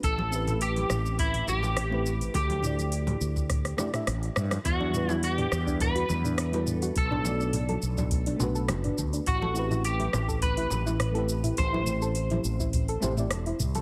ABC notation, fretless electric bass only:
X:1
M:4/4
L:1/8
Q:"Swing 16ths" 1/4=104
K:Em
V:1 name="Fretless electric bass" clef=bass
A,,,3 A,,,2 A,,,3 | D,,3 D,,2 z A,,, G,, | E,,3 E,,2 E,,3 | B,,,3 B,,,2 B,,, F,,, D,, |
A,,,3 A,,,2 A,,,3 | A,,,3 A,,,2 A,,, E,,, C,, |]